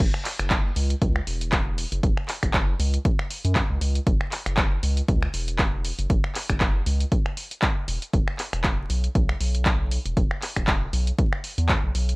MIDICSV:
0, 0, Header, 1, 3, 480
1, 0, Start_track
1, 0, Time_signature, 4, 2, 24, 8
1, 0, Tempo, 508475
1, 11478, End_track
2, 0, Start_track
2, 0, Title_t, "Analog synth bass"
2, 0, Program_c, 0, 38
2, 372, Note_on_c, 0, 30, 85
2, 665, Note_off_c, 0, 30, 0
2, 719, Note_on_c, 0, 37, 104
2, 892, Note_off_c, 0, 37, 0
2, 959, Note_on_c, 0, 37, 89
2, 1132, Note_off_c, 0, 37, 0
2, 1199, Note_on_c, 0, 28, 83
2, 1745, Note_off_c, 0, 28, 0
2, 1812, Note_on_c, 0, 30, 107
2, 1886, Note_off_c, 0, 30, 0
2, 1919, Note_on_c, 0, 30, 99
2, 2011, Note_off_c, 0, 30, 0
2, 2293, Note_on_c, 0, 30, 87
2, 2586, Note_off_c, 0, 30, 0
2, 2639, Note_on_c, 0, 37, 110
2, 2812, Note_off_c, 0, 37, 0
2, 3252, Note_on_c, 0, 42, 91
2, 3409, Note_off_c, 0, 42, 0
2, 3492, Note_on_c, 0, 37, 101
2, 3565, Note_off_c, 0, 37, 0
2, 3599, Note_on_c, 0, 37, 96
2, 3772, Note_off_c, 0, 37, 0
2, 3839, Note_on_c, 0, 30, 101
2, 3930, Note_off_c, 0, 30, 0
2, 4212, Note_on_c, 0, 30, 91
2, 4505, Note_off_c, 0, 30, 0
2, 4559, Note_on_c, 0, 37, 104
2, 4732, Note_off_c, 0, 37, 0
2, 4799, Note_on_c, 0, 37, 88
2, 4972, Note_off_c, 0, 37, 0
2, 5039, Note_on_c, 0, 28, 80
2, 5585, Note_off_c, 0, 28, 0
2, 5652, Note_on_c, 0, 30, 108
2, 5726, Note_off_c, 0, 30, 0
2, 5759, Note_on_c, 0, 30, 100
2, 5850, Note_off_c, 0, 30, 0
2, 6132, Note_on_c, 0, 30, 89
2, 6425, Note_off_c, 0, 30, 0
2, 6479, Note_on_c, 0, 37, 106
2, 6652, Note_off_c, 0, 37, 0
2, 7439, Note_on_c, 0, 28, 102
2, 7530, Note_off_c, 0, 28, 0
2, 7679, Note_on_c, 0, 28, 99
2, 7770, Note_off_c, 0, 28, 0
2, 8052, Note_on_c, 0, 28, 90
2, 8345, Note_off_c, 0, 28, 0
2, 8399, Note_on_c, 0, 35, 105
2, 8572, Note_off_c, 0, 35, 0
2, 8639, Note_on_c, 0, 35, 91
2, 8812, Note_off_c, 0, 35, 0
2, 8879, Note_on_c, 0, 35, 86
2, 9425, Note_off_c, 0, 35, 0
2, 9492, Note_on_c, 0, 28, 104
2, 9565, Note_off_c, 0, 28, 0
2, 9599, Note_on_c, 0, 28, 100
2, 9690, Note_off_c, 0, 28, 0
2, 9972, Note_on_c, 0, 28, 87
2, 10265, Note_off_c, 0, 28, 0
2, 10318, Note_on_c, 0, 35, 108
2, 10491, Note_off_c, 0, 35, 0
2, 10932, Note_on_c, 0, 40, 92
2, 11088, Note_off_c, 0, 40, 0
2, 11172, Note_on_c, 0, 35, 100
2, 11246, Note_off_c, 0, 35, 0
2, 11279, Note_on_c, 0, 35, 97
2, 11452, Note_off_c, 0, 35, 0
2, 11478, End_track
3, 0, Start_track
3, 0, Title_t, "Drums"
3, 0, Note_on_c, 9, 36, 116
3, 0, Note_on_c, 9, 42, 53
3, 0, Note_on_c, 9, 49, 103
3, 94, Note_off_c, 9, 36, 0
3, 94, Note_off_c, 9, 42, 0
3, 94, Note_off_c, 9, 49, 0
3, 132, Note_on_c, 9, 26, 70
3, 227, Note_off_c, 9, 26, 0
3, 235, Note_on_c, 9, 39, 41
3, 239, Note_on_c, 9, 46, 114
3, 329, Note_off_c, 9, 39, 0
3, 334, Note_off_c, 9, 46, 0
3, 372, Note_on_c, 9, 26, 82
3, 372, Note_on_c, 9, 42, 70
3, 467, Note_off_c, 9, 26, 0
3, 467, Note_off_c, 9, 42, 0
3, 475, Note_on_c, 9, 39, 126
3, 479, Note_on_c, 9, 36, 125
3, 479, Note_on_c, 9, 42, 58
3, 570, Note_off_c, 9, 39, 0
3, 574, Note_off_c, 9, 36, 0
3, 574, Note_off_c, 9, 42, 0
3, 719, Note_on_c, 9, 46, 108
3, 813, Note_off_c, 9, 46, 0
3, 852, Note_on_c, 9, 42, 70
3, 947, Note_off_c, 9, 42, 0
3, 959, Note_on_c, 9, 36, 125
3, 959, Note_on_c, 9, 42, 55
3, 1054, Note_off_c, 9, 36, 0
3, 1054, Note_off_c, 9, 42, 0
3, 1092, Note_on_c, 9, 26, 85
3, 1187, Note_off_c, 9, 26, 0
3, 1199, Note_on_c, 9, 46, 112
3, 1294, Note_off_c, 9, 46, 0
3, 1332, Note_on_c, 9, 42, 68
3, 1427, Note_off_c, 9, 42, 0
3, 1435, Note_on_c, 9, 39, 124
3, 1439, Note_on_c, 9, 36, 119
3, 1439, Note_on_c, 9, 42, 56
3, 1529, Note_off_c, 9, 39, 0
3, 1534, Note_off_c, 9, 36, 0
3, 1534, Note_off_c, 9, 42, 0
3, 1679, Note_on_c, 9, 46, 107
3, 1774, Note_off_c, 9, 46, 0
3, 1813, Note_on_c, 9, 42, 69
3, 1907, Note_off_c, 9, 42, 0
3, 1919, Note_on_c, 9, 36, 120
3, 1919, Note_on_c, 9, 42, 52
3, 2014, Note_off_c, 9, 36, 0
3, 2014, Note_off_c, 9, 42, 0
3, 2052, Note_on_c, 9, 26, 70
3, 2147, Note_off_c, 9, 26, 0
3, 2155, Note_on_c, 9, 39, 41
3, 2159, Note_on_c, 9, 46, 116
3, 2249, Note_off_c, 9, 39, 0
3, 2254, Note_off_c, 9, 46, 0
3, 2292, Note_on_c, 9, 26, 78
3, 2292, Note_on_c, 9, 42, 70
3, 2293, Note_on_c, 9, 36, 63
3, 2387, Note_off_c, 9, 26, 0
3, 2387, Note_off_c, 9, 36, 0
3, 2387, Note_off_c, 9, 42, 0
3, 2395, Note_on_c, 9, 39, 127
3, 2399, Note_on_c, 9, 36, 126
3, 2399, Note_on_c, 9, 42, 55
3, 2489, Note_off_c, 9, 39, 0
3, 2494, Note_off_c, 9, 36, 0
3, 2494, Note_off_c, 9, 42, 0
3, 2639, Note_on_c, 9, 46, 108
3, 2734, Note_off_c, 9, 46, 0
3, 2773, Note_on_c, 9, 42, 69
3, 2867, Note_off_c, 9, 42, 0
3, 2879, Note_on_c, 9, 36, 127
3, 2880, Note_on_c, 9, 42, 53
3, 2974, Note_off_c, 9, 36, 0
3, 2974, Note_off_c, 9, 42, 0
3, 3013, Note_on_c, 9, 26, 80
3, 3107, Note_off_c, 9, 26, 0
3, 3119, Note_on_c, 9, 46, 109
3, 3214, Note_off_c, 9, 46, 0
3, 3253, Note_on_c, 9, 42, 65
3, 3347, Note_off_c, 9, 42, 0
3, 3355, Note_on_c, 9, 39, 127
3, 3359, Note_on_c, 9, 36, 125
3, 3359, Note_on_c, 9, 42, 56
3, 3449, Note_off_c, 9, 39, 0
3, 3454, Note_off_c, 9, 36, 0
3, 3454, Note_off_c, 9, 42, 0
3, 3599, Note_on_c, 9, 46, 111
3, 3694, Note_off_c, 9, 46, 0
3, 3732, Note_on_c, 9, 42, 68
3, 3827, Note_off_c, 9, 42, 0
3, 3839, Note_on_c, 9, 36, 127
3, 3839, Note_on_c, 9, 42, 51
3, 3934, Note_off_c, 9, 36, 0
3, 3934, Note_off_c, 9, 42, 0
3, 3973, Note_on_c, 9, 26, 66
3, 4067, Note_off_c, 9, 26, 0
3, 4075, Note_on_c, 9, 39, 42
3, 4079, Note_on_c, 9, 46, 116
3, 4169, Note_off_c, 9, 39, 0
3, 4174, Note_off_c, 9, 46, 0
3, 4212, Note_on_c, 9, 26, 74
3, 4212, Note_on_c, 9, 42, 63
3, 4307, Note_off_c, 9, 26, 0
3, 4307, Note_off_c, 9, 42, 0
3, 4315, Note_on_c, 9, 39, 126
3, 4319, Note_on_c, 9, 36, 127
3, 4319, Note_on_c, 9, 42, 53
3, 4409, Note_off_c, 9, 39, 0
3, 4413, Note_off_c, 9, 42, 0
3, 4414, Note_off_c, 9, 36, 0
3, 4559, Note_on_c, 9, 46, 114
3, 4653, Note_off_c, 9, 46, 0
3, 4692, Note_on_c, 9, 42, 63
3, 4786, Note_off_c, 9, 42, 0
3, 4799, Note_on_c, 9, 36, 127
3, 4799, Note_on_c, 9, 42, 52
3, 4893, Note_off_c, 9, 42, 0
3, 4894, Note_off_c, 9, 36, 0
3, 4932, Note_on_c, 9, 26, 84
3, 5027, Note_off_c, 9, 26, 0
3, 5039, Note_on_c, 9, 46, 115
3, 5133, Note_off_c, 9, 46, 0
3, 5172, Note_on_c, 9, 42, 67
3, 5267, Note_off_c, 9, 42, 0
3, 5275, Note_on_c, 9, 39, 122
3, 5279, Note_on_c, 9, 36, 125
3, 5279, Note_on_c, 9, 42, 52
3, 5369, Note_off_c, 9, 39, 0
3, 5373, Note_off_c, 9, 42, 0
3, 5374, Note_off_c, 9, 36, 0
3, 5519, Note_on_c, 9, 46, 109
3, 5614, Note_off_c, 9, 46, 0
3, 5652, Note_on_c, 9, 42, 64
3, 5747, Note_off_c, 9, 42, 0
3, 5759, Note_on_c, 9, 36, 117
3, 5759, Note_on_c, 9, 42, 49
3, 5854, Note_off_c, 9, 36, 0
3, 5854, Note_off_c, 9, 42, 0
3, 5892, Note_on_c, 9, 26, 68
3, 5987, Note_off_c, 9, 26, 0
3, 5995, Note_on_c, 9, 39, 38
3, 5999, Note_on_c, 9, 46, 114
3, 6089, Note_off_c, 9, 39, 0
3, 6094, Note_off_c, 9, 46, 0
3, 6132, Note_on_c, 9, 26, 81
3, 6132, Note_on_c, 9, 36, 65
3, 6132, Note_on_c, 9, 42, 65
3, 6226, Note_off_c, 9, 26, 0
3, 6226, Note_off_c, 9, 42, 0
3, 6227, Note_off_c, 9, 36, 0
3, 6235, Note_on_c, 9, 39, 118
3, 6239, Note_on_c, 9, 36, 127
3, 6239, Note_on_c, 9, 42, 50
3, 6329, Note_off_c, 9, 39, 0
3, 6333, Note_off_c, 9, 42, 0
3, 6334, Note_off_c, 9, 36, 0
3, 6479, Note_on_c, 9, 46, 114
3, 6573, Note_off_c, 9, 46, 0
3, 6612, Note_on_c, 9, 42, 64
3, 6706, Note_off_c, 9, 42, 0
3, 6719, Note_on_c, 9, 36, 126
3, 6719, Note_on_c, 9, 42, 50
3, 6813, Note_off_c, 9, 42, 0
3, 6814, Note_off_c, 9, 36, 0
3, 6852, Note_on_c, 9, 26, 80
3, 6946, Note_off_c, 9, 26, 0
3, 6959, Note_on_c, 9, 46, 110
3, 7053, Note_off_c, 9, 46, 0
3, 7092, Note_on_c, 9, 42, 64
3, 7186, Note_off_c, 9, 42, 0
3, 7195, Note_on_c, 9, 39, 116
3, 7199, Note_on_c, 9, 36, 125
3, 7199, Note_on_c, 9, 42, 51
3, 7289, Note_off_c, 9, 39, 0
3, 7293, Note_off_c, 9, 42, 0
3, 7294, Note_off_c, 9, 36, 0
3, 7439, Note_on_c, 9, 46, 110
3, 7533, Note_off_c, 9, 46, 0
3, 7572, Note_on_c, 9, 42, 65
3, 7667, Note_off_c, 9, 42, 0
3, 7679, Note_on_c, 9, 36, 119
3, 7679, Note_on_c, 9, 42, 48
3, 7773, Note_off_c, 9, 42, 0
3, 7774, Note_off_c, 9, 36, 0
3, 7812, Note_on_c, 9, 26, 72
3, 7907, Note_off_c, 9, 26, 0
3, 7915, Note_on_c, 9, 39, 37
3, 7919, Note_on_c, 9, 46, 114
3, 8009, Note_off_c, 9, 39, 0
3, 8014, Note_off_c, 9, 46, 0
3, 8053, Note_on_c, 9, 26, 81
3, 8053, Note_on_c, 9, 42, 64
3, 8147, Note_off_c, 9, 26, 0
3, 8147, Note_off_c, 9, 42, 0
3, 8155, Note_on_c, 9, 39, 121
3, 8159, Note_on_c, 9, 36, 124
3, 8160, Note_on_c, 9, 42, 53
3, 8250, Note_off_c, 9, 39, 0
3, 8254, Note_off_c, 9, 36, 0
3, 8254, Note_off_c, 9, 42, 0
3, 8399, Note_on_c, 9, 46, 111
3, 8494, Note_off_c, 9, 46, 0
3, 8533, Note_on_c, 9, 42, 62
3, 8627, Note_off_c, 9, 42, 0
3, 8639, Note_on_c, 9, 36, 121
3, 8639, Note_on_c, 9, 42, 48
3, 8734, Note_off_c, 9, 36, 0
3, 8734, Note_off_c, 9, 42, 0
3, 8772, Note_on_c, 9, 26, 85
3, 8867, Note_off_c, 9, 26, 0
3, 8879, Note_on_c, 9, 46, 109
3, 8974, Note_off_c, 9, 46, 0
3, 9012, Note_on_c, 9, 42, 66
3, 9107, Note_off_c, 9, 42, 0
3, 9115, Note_on_c, 9, 39, 116
3, 9119, Note_on_c, 9, 36, 123
3, 9119, Note_on_c, 9, 42, 51
3, 9209, Note_off_c, 9, 39, 0
3, 9213, Note_off_c, 9, 42, 0
3, 9214, Note_off_c, 9, 36, 0
3, 9359, Note_on_c, 9, 46, 105
3, 9453, Note_off_c, 9, 46, 0
3, 9492, Note_on_c, 9, 42, 62
3, 9587, Note_off_c, 9, 42, 0
3, 9599, Note_on_c, 9, 36, 113
3, 9599, Note_on_c, 9, 42, 51
3, 9694, Note_off_c, 9, 36, 0
3, 9694, Note_off_c, 9, 42, 0
3, 9732, Note_on_c, 9, 26, 73
3, 9827, Note_off_c, 9, 26, 0
3, 9835, Note_on_c, 9, 39, 37
3, 9839, Note_on_c, 9, 46, 110
3, 9929, Note_off_c, 9, 39, 0
3, 9933, Note_off_c, 9, 46, 0
3, 9972, Note_on_c, 9, 26, 84
3, 9972, Note_on_c, 9, 36, 60
3, 9972, Note_on_c, 9, 42, 66
3, 10066, Note_off_c, 9, 26, 0
3, 10066, Note_off_c, 9, 42, 0
3, 10067, Note_off_c, 9, 36, 0
3, 10075, Note_on_c, 9, 39, 120
3, 10079, Note_on_c, 9, 36, 119
3, 10079, Note_on_c, 9, 42, 53
3, 10169, Note_off_c, 9, 39, 0
3, 10173, Note_off_c, 9, 42, 0
3, 10174, Note_off_c, 9, 36, 0
3, 10319, Note_on_c, 9, 46, 104
3, 10413, Note_off_c, 9, 46, 0
3, 10452, Note_on_c, 9, 42, 66
3, 10547, Note_off_c, 9, 42, 0
3, 10559, Note_on_c, 9, 36, 126
3, 10559, Note_on_c, 9, 42, 53
3, 10654, Note_off_c, 9, 36, 0
3, 10654, Note_off_c, 9, 42, 0
3, 10692, Note_on_c, 9, 26, 89
3, 10787, Note_off_c, 9, 26, 0
3, 10799, Note_on_c, 9, 46, 109
3, 10894, Note_off_c, 9, 46, 0
3, 10932, Note_on_c, 9, 42, 64
3, 11027, Note_off_c, 9, 42, 0
3, 11035, Note_on_c, 9, 39, 117
3, 11039, Note_on_c, 9, 36, 114
3, 11039, Note_on_c, 9, 42, 55
3, 11129, Note_off_c, 9, 39, 0
3, 11134, Note_off_c, 9, 36, 0
3, 11134, Note_off_c, 9, 42, 0
3, 11279, Note_on_c, 9, 46, 101
3, 11374, Note_off_c, 9, 46, 0
3, 11412, Note_on_c, 9, 42, 66
3, 11478, Note_off_c, 9, 42, 0
3, 11478, End_track
0, 0, End_of_file